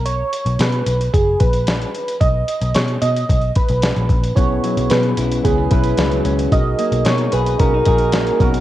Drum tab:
HH |x-xxxxxxx-xxxxxx|x-xxxxxxxxxxxxxx|x-xxxxxxx-xxxxxx|x-xxxxxxx-xxxxxx|
SD |----o-------o---|----o-------o---|----o-------o---|----o-------o---|
BD |--------o-o-----|o-------o-o---o-|o-------o-o-----|o-------o-o---o-|